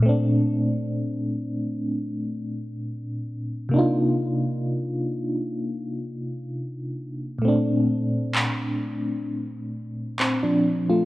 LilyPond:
<<
  \new Staff \with { instrumentName = "FM electric piano" } { \time 4/4 \key bes \major \tempo 4 = 65 << { <bes, a c' d'>1 | <c bes d' ees' f'>1 | <bes, a c' d'>1 | } \\ { r1 | r1 | r2. c'16 <f d'>8 <a f'>16 | } >> }
  \new DrumStaff \with { instrumentName = "Drums" } \drummode { \time 4/4 r4 r4 r4 r4 | r4 r4 r4 r4 | r4 hc4 r4 hc4 | }
>>